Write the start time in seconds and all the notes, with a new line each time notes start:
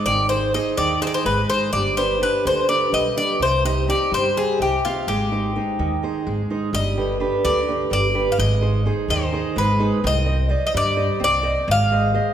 Already playing: D#4 G#4 C5
0.06 G#1 D#3 D5
0.29 D#4 G#4 C5
0.54 D#4 G#4 C5 D#5
0.77 D#2 D#3 D5
1.01 D#4 G#4 C5
1.07 D5
1.14 C5
1.24 G#1 G#3 B4
1.49 D#4 G#4 C5
1.73 G1 G3 D5
1.97 D4 G4 B4 C5
2.21 D4 G4 B4
2.45 D2 D3 C5
2.68 D4 G4 B4 D5
2.92 B1 G3 D#5
3.17 D4 G4 B4 D5
3.40 C2 C3 C5
3.64 C4 D#4 G4 D#5
3.88 C4 D#4 G4 D5
4.12 G2 G3 C5
4.36 C4 D#4 G4 G#4
4.59 C2 C3 G4
4.85 C4 D#4 F4 G4
5.07 G#1 G#3 G4
5.31 G#3 D#4 C5
5.56 G#3 D#4 C5
5.79 D#2 D#3
6.03 D#4 G#4 C5
6.27 G#1 G#3
6.50 D#4 G#4 C5
6.73 G1 G3 D#5
6.97 D3 G4 B4
7.20 D4 G4 B4
7.44 D2 D3 D5
7.68 D4 G4 B4
7.90 G1 G3 D5
8.14 D4 G4 B4
8.32 F5
8.37 G#1 G#3 D#5
8.61 D#4 G#4 C5
8.86 D#4 G#4 C5
9.08 D#2 D#3 C5
9.32 D#4 G#4 C5
9.56 G#1 G#3 B4
9.79 D#4 G#4 C5
10.04 C2 C4 D#5
10.26 C5 D#5
10.49 C5 D5 D#5
10.67 D#5
10.74 G2 G3 D5
10.97 C5 D5 D#5
11.20 C2 C4
11.24 D5
11.43 C5 D5 D#5
11.68 G#1 G#3 F5
11.92 G#4 C5 D#5
12.14 G#4 C5 D#5